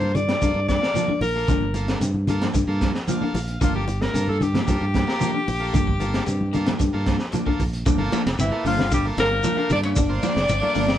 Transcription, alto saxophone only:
0.00 0.16 C5 medium
0.15 0.67 D5 loud
0.68 1.18 D5 loud
1.22 1.98 A#4 medium
3.64 3.74 F4 loud
3.75 4.03 G4 medium
4.02 4.28 A#4 medium
4.29 4.44 A4 medium
4.43 7.33 G4 loud
8.40 8.64 E4 medium
8.67 8.90 F4 medium
8.94 9.05 G4 medium
9.20 9.68 A#4 loud
9.72 9.78 D5 loud
9.85 10.98 D5 loud

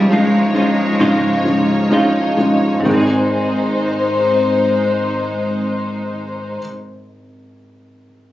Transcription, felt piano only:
0.00 2.82 G#2 medium
0.00 0.11 G#3 medium
0.00 0.11 C#4 medium
0.00 0.11 D#4 medium
0.00 0.12 F4 medium
0.11 0.52 G#3 medium
0.11 0.53 C#4 soft
0.11 0.53 D#4 soft
0.11 0.53 F4 medium
0.54 0.97 G#3 medium
0.54 0.97 C#4 soft
0.54 0.97 D#4 soft
0.54 0.97 F4 medium
1.00 1.42 G#3 medium
1.00 1.43 C#4 medium
1.00 1.43 D#4 medium
1.00 1.43 F4 medium
1.44 1.88 G#3 soft
1.44 1.88 C#4 soft
1.44 1.89 D#4 soft
1.44 1.89 F4 medium
1.89 2.35 G#3 medium
1.89 2.35 C#4 soft
1.89 2.35 D#4 medium
1.89 2.35 F4 medium
2.37 2.81 G#3 medium
2.37 2.83 C#4 medium
2.37 2.83 D#4 soft
2.37 2.84 F4 medium
2.83 6.58 G#1 medium
2.83 6.56 G#3 medium
2.83 6.58 C4 soft
2.83 6.59 D#4 soft
2.87 6.60 G#4 medium

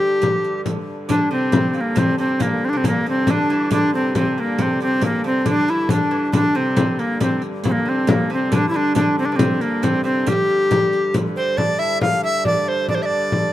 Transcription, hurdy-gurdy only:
0.00 1.10 G2 medium
0.00 1.09 D3 medium
1.09 6.34 G2 medium
1.09 6.35 D3 medium
6.34 11.59 G2 medium
6.34 11.59 D3 medium
11.59 13.53 G2 medium
11.59 13.53 D3 medium

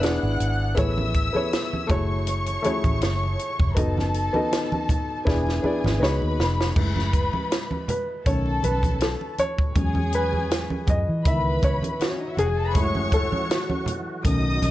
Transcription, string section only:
0.03 0.76 F#5 medium
0.03 0.76 F#6 medium
0.77 1.87 E5 medium
0.77 1.87 E6 medium
1.90 3.73 C#5 medium
1.90 3.73 C#6 medium
3.76 5.23 A4 medium
3.76 5.23 A5 medium
5.27 6.00 G#4 medium
5.27 6.00 G#5 medium
6.02 6.75 B4 medium
6.02 6.75 B5 medium
6.77 7.86 B4 medium
6.77 7.87 B5 medium
8.26 9.36 A4 medium
8.26 9.36 A5 medium
9.75 10.85 G#4 medium
9.75 10.86 G#5 loud
11.24 12.00 B4 medium
11.24 12.00 B5 medium
12.10 12.20 C#4 medium
12.10 12.20 C#5 medium
12.21 12.29 D#4 medium
12.21 12.29 D#5 medium
12.28 12.38 E4 medium
12.28 12.37 E5 medium
12.37 12.47 F#4 medium
12.37 12.47 F#5 medium
12.47 12.57 G#4 medium
12.47 12.57 G#5 medium
12.57 12.66 A4 medium
12.57 12.66 A5 medium
12.66 12.75 B4 medium
12.66 12.75 B5 loud
12.75 13.85 C#5 medium
12.75 13.85 C#6 loud
14.25 14.71 D#5 medium
14.25 14.71 D#6 loud

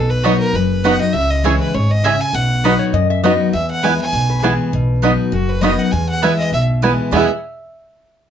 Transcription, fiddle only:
0.00 0.12 A4 medium
0.10 0.26 B4 medium
0.25 0.39 C#5 medium
0.40 0.57 A#4 loud
0.55 0.87 B4 medium
0.85 1.00 F#5 loud
1.01 1.14 D#5 medium
1.13 1.32 E5 loud
1.30 1.46 D#5 loud
1.45 1.59 C#5 medium
1.60 1.76 B4 medium
1.74 1.92 C#5 medium
1.91 2.06 D#5 loud
2.05 2.22 E5 loud
2.20 2.36 G#5 loud
2.35 2.80 F#5 medium
3.53 3.68 E5 medium
3.71 3.85 F#5 medium
3.84 4.00 G#5 medium
4.01 4.41 G#5 loud
5.32 5.51 F#4 medium
5.49 5.63 B4 medium
5.61 5.80 D#5 medium
5.79 5.93 F#5 medium
5.92 6.08 G#5 medium
6.09 6.24 F#5 loud
6.23 6.38 E5 medium
6.39 6.52 D#5 loud
6.53 6.63 E5 medium
7.14 7.28 E5 medium

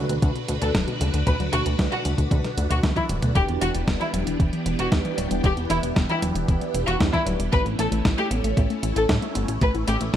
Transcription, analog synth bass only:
0.09 0.19 D2 medium
0.23 0.32 D2 medium
0.49 0.58 D2 medium
0.62 0.71 D2 medium
0.75 0.84 D1 loud
1.01 1.10 D2 medium
1.14 1.23 D2 medium
1.27 1.36 D2 medium
1.40 1.50 D2 medium
1.53 1.63 D2 medium
1.66 1.76 D2 medium
1.79 1.89 D2 medium
2.05 2.15 D2 medium
2.18 2.28 D2 medium
2.31 2.41 D2 loud
2.57 2.67 D2 loud
2.70 2.80 D2 medium
2.83 2.93 D2 loud
3.09 3.19 D1 medium
3.23 3.32 D2 medium
3.35 3.45 E1 loud
3.49 3.58 E1 medium
3.62 3.71 E1 medium
3.75 3.84 E1 medium
3.88 3.97 E1 loud
4.14 4.23 E1 medium
4.27 4.36 E1 medium
4.40 4.49 E1 loud
4.66 4.75 E1 medium
4.79 4.89 E1 medium
4.92 5.02 E2 medium
5.18 5.28 D1 medium
5.31 5.41 E1 medium
5.44 5.54 E1 loud
5.57 5.67 E1 medium
5.70 5.80 E1 medium
5.83 5.93 E1 medium
5.96 6.06 E1 loud
6.22 6.32 E1 medium
6.35 6.45 E1 medium
6.48 6.58 E1 medium
6.74 6.84 E1 loud
6.87 6.97 E1 medium
7.01 7.10 E2 loud
7.26 7.36 D1 medium
7.39 7.49 E1 medium
7.53 7.63 A1 loud
7.65 7.75 A1 medium
7.79 7.88 A1 medium
7.91 8.01 A1 medium
8.05 8.15 A1 medium
8.31 8.41 A1 loud
8.44 8.54 A1 medium
8.57 8.67 A1 medium
8.83 8.93 A1 medium
8.96 9.06 A1 medium
9.09 9.19 A2 medium
9.35 9.45 G1 medium
9.48 9.58 A1 medium
9.61 9.71 A1 loud
9.74 9.84 A1 medium
9.87 9.97 A1 medium
10.01 10.10 A1 medium

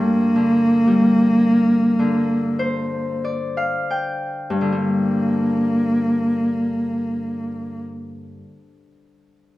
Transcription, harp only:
0.00 3.75 G2 soft
0.36 1.98 D3 soft
0.87 2.04 G3 soft
1.99 4.60 D3 soft
2.59 4.57 C5 soft
3.24 5.09 D5 soft
3.57 5.23 F5 soft
3.90 5.46 G5 soft
4.50 8.40 G2 soft
4.61 8.51 D3 soft
4.72 8.29 G3 soft

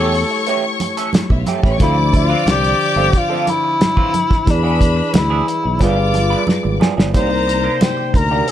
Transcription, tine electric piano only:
0.00 1.75 A3 medium
0.00 1.76 E4 medium
0.00 1.77 G4 medium
0.00 1.78 C#5 medium
1.78 4.42 D3 medium
1.78 4.44 F3 medium
1.78 4.43 D4 medium
1.83 4.45 C5 medium
4.46 5.77 E3 medium
4.46 5.78 E4 medium
4.46 5.79 G#4 medium
4.50 5.80 D5 medium
5.80 7.11 G3 medium
5.80 7.12 F4 medium
5.80 7.13 G#4 medium
5.85 7.14 B4 medium
7.13 8.52 C3 medium
7.13 8.52 A#3 medium
7.13 8.52 D#4 medium
7.18 7.23 C#5 medium
7.24 8.52 D5 medium

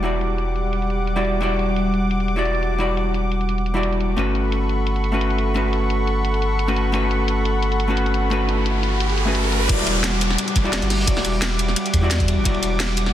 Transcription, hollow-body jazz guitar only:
0.03 1.14 G3 medium
0.03 1.15 E4 medium
0.03 1.15 F#4 medium
0.03 1.15 D5 medium
1.16 1.39 G3 medium
1.16 1.40 E4 medium
1.16 1.40 F#4 medium
1.16 1.40 D5 medium
1.41 2.34 G3 medium
1.41 2.35 E4 medium
1.41 2.35 F#4 medium
1.41 2.36 D5 medium
2.36 2.77 G3 medium
2.36 2.78 E4 medium
2.36 2.78 F#4 medium
2.36 2.79 D5 medium
2.78 3.73 G3 medium
2.78 3.73 E4 medium
2.78 3.74 F#4 medium
2.78 3.74 D5 medium
3.74 4.15 G3 medium
3.74 4.16 E4 medium
3.74 4.16 F#4 medium
3.74 4.16 D5 medium
4.16 5.10 A3 medium
4.16 5.11 C#4 medium
4.16 5.11 F#4 medium
4.16 5.12 B4 medium
5.12 5.53 A3 medium
5.12 5.54 C#4 medium
5.12 5.54 F#4 medium
5.12 5.54 B4 medium
5.54 6.66 A3 medium
5.54 6.66 C#4 medium
5.54 6.67 F#4 medium
5.54 6.67 B4 medium
6.68 6.91 A3 medium
6.68 6.92 C#4 medium
6.68 6.92 F#4 medium
6.68 6.92 B4 medium
6.92 7.86 A3 medium
6.92 7.87 C#4 medium
6.92 7.87 F#4 medium
6.92 7.88 B4 loud
7.88 8.29 A3 medium
7.88 8.29 C#4 medium
7.88 8.30 F#4 medium
7.88 8.30 B4 medium
8.30 9.24 A3 medium
8.30 9.25 C#4 medium
8.30 9.25 F#4 medium
8.30 9.26 B4 medium
9.25 9.67 A3 medium
9.25 9.67 C#4 medium
9.25 9.68 F#4 medium
9.25 9.68 B4 medium
9.68 10.62 G3 loud
9.68 10.62 E4 medium
9.68 10.63 F#4 medium
9.68 10.63 D5 loud
10.64 11.05 G3 medium
10.64 11.05 E4 medium
10.64 11.06 F#4 medium
10.64 11.06 D5 loud
11.06 12.00 G3 medium
11.06 12.01 E4 medium
11.06 12.01 F#4 medium
11.06 12.02 D5 loud
12.01 12.43 G3 medium
12.01 12.43 E4 medium
12.01 12.44 F#4 medium
12.01 12.44 D5 loud
12.44 13.13 G3 loud
12.44 13.13 E4 medium
12.44 13.13 F#4 medium
12.44 13.13 D5 loud

